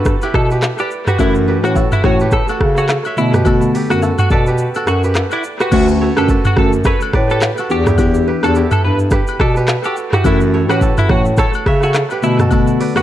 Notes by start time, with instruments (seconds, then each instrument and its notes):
Already playing: bass clarinet G2, kora E4 F#4 A4 B4
0.05 kick, cross-stick, shaker
0.22 kora E4 G4, high agogo, shaker
0.34 bass clarinet B2, clean electric guitar A4, kick, cross-stick
0.51 kora G4 B4, shaker
0.62 cross-stick, clap, low woodblock, shaker
0.78 clean electric guitar G4, kora B4 D5, high agogo, shaker
0.91 shaker
1.07 clean electric guitar F#4, kora G4 B4, cross-stick, mid tom, shaker
1.19 bass clarinet F#2, fm electric piano E3 A3 C#4 F#4, clean electric guitar E4, kora F#4 A4, kick, high agogo, shaker
1.35 shaker
1.48 kora G4 B4
1.64 bass clarinet A2, fm electric piano E3 A3 C#4 F#4, clean electric guitar F#4, cross-stick, high agogo, shaker
1.76 kora F#4 A4, kick, low woodblock, shaker
1.92 clean electric guitar E4, mid tom, high agogo, shaker
2.04 bass clarinet A2, fm electric piano E3 A3 C#4 F#4, clean electric guitar F#4, kora A4 C#5, kick, cross-stick
2.20 kora G4 B4, shaker
2.31 clean electric guitar A4, kick, cross-stick, shaker
2.48 kora F#4 A4, high agogo, shaker
2.61 bass clarinet C#3, kick, cross-stick
2.77 clean electric guitar F#4, kora A4 C#5, shaker
2.89 cross-stick, clap, low woodblock, shaker
3.05 kora C#5 E5, high agogo, shaker
3.17 bass clarinet B2, fm electric piano D3 A3 B3 F#4, clean electric guitar E4, shaker
3.34 kora G4 B4, cross-stick, mid tom, shaker
3.45 fm electric piano D3 A3 B3 F#4, kora F#4 A4, kick, high agogo, shaker
3.62 shaker
3.75 kora G4 B4, open hi-hat, shaker
3.90 bass clarinet F#2, fm electric piano D3 A3 B3 F#4, clean electric guitar F#4, cross-stick, high agogo, shaker
4.02 kora F#4 A4, low woodblock, shaker
4.18 clean electric guitar F#4, mid tom, high agogo, shaker
4.30 bass clarinet B2, clean electric guitar A4, kora B4 D5, kick, shaker
4.46 kora G4 B4, shaker
4.58 shaker
4.74 kora F#4 A4, high agogo, shaker
4.87 bass clarinet F#2, clean electric guitar F#4, cross-stick, shaker
5.04 kora G4 B4, shaker
5.15 cross-stick, clap, low woodblock, shaker
5.31 clean electric guitar E4, kora B4 D5, high agogo, shaker
5.44 shaker
5.60 clean electric guitar F#4, kora G4 B4, cross-stick, shaker
5.71 bass clarinet D2, fm electric piano D3 A3 C#4 F#4, clean electric guitar F#4, kora F#4 A4, kick, crash, high agogo, shaker
5.88 shaker
6.01 kora A4 C#5
6.16 bass clarinet F#2, fm electric piano D3 A3 C#4 F#4, kora G4 B4, clean electric guitar A4, cross-stick, high agogo, shaker
6.29 kora F#4 A4, kick, shaker
6.45 clean electric guitar F#4, mid tom, high agogo, shaker
6.57 bass clarinet F#2, fm electric piano D3 A3 C#4 F#4, clean electric guitar A4, kick, cross-stick
6.73 shaker
6.84 kora A4 C#5, clean electric guitar B4, kick, cross-stick, shaker
7.01 high agogo, shaker
7.13 bass clarinet A2, kora B4 D5, kick, cross-stick
7.30 kora G4 B4, clean electric guitar A4, shaker
7.41 cross-stick, clap, low woodblock, shaker
7.58 kora F#4 A4, high agogo, shaker
7.70 bass clarinet E2, fm electric piano E3 B3 D4 G4, clean electric guitar G4, shaker
7.86 kora E4 G4, cross-stick, mid tom, shaker
7.98 fm electric piano E3 B3 D4 G4, kora E4 G4, kick, high agogo, shaker
8.14 shaker
8.28 kora G4 B4
8.43 bass clarinet E2, fm electric piano E3 B3 D4 G4, kora F#4 A4, clean electric guitar A4, cross-stick, high agogo, shaker
8.55 kora E4 G4, shaker
8.71 clean electric guitar A4, mid tom, high agogo, shaker
8.83 bass clarinet G2, clean electric guitar B4
8.99 shaker
9.11 kora G4 B4, kick, cross-stick, shaker
9.27 high agogo, shaker
9.40 bass clarinet B2, clean electric guitar A4, kora B4 D5, kick, cross-stick
9.56 kora G4 B4, shaker
9.68 cross-stick, clap, low woodblock, shaker
9.84 kora F#4 A4, clean electric guitar G4, high agogo, shaker
9.96 shaker
10.13 kora E4 G4, clean electric guitar F#4, cross-stick, mid tom, shaker
10.24 bass clarinet F#2, fm electric piano E3 A3 C#4 F#4, clean electric guitar E4, kora F#4 A4, kick, high agogo, shaker
10.41 shaker
10.54 kora A4 C#5
10.69 bass clarinet A2, fm electric piano E3 A3 C#4 F#4, clean electric guitar F#4, kora G4 B4, cross-stick, high agogo, shaker
10.81 kora F#4 A4, kick, shaker
10.97 clean electric guitar E4, mid tom, high agogo, shaker
11.09 bass clarinet A2, fm electric piano E3 A3 C#4 F#4, clean electric guitar F#4, kick, cross-stick
11.26 shaker
11.37 clean electric guitar A4, kora A4 C#5, kick, cross-stick, shaker
11.54 high agogo, shaker
11.66 bass clarinet C#3, kora C#5 E5, kick, cross-stick
11.83 clean electric guitar F#4, kora A4 C#5, shaker
11.94 cross-stick, clap, low woodblock, shaker
12.10 kora G4 B4, high agogo, shaker
12.22 bass clarinet B2, fm electric piano D3 A3 B3 F#4, clean electric guitar E4, shaker
12.39 kora F#4 A4, cross-stick, mid tom, shaker
12.51 fm electric piano D3 A3 B3 F#4, kora F#4 A4, kick, high agogo, shaker
12.67 shaker
12.80 kora B4 D5, open hi-hat, shaker
12.95 bass clarinet F#2, fm electric piano D3 A3 B3 F#4, clean electric guitar F#4, kora G4 B4, cross-stick, high agogo, shaker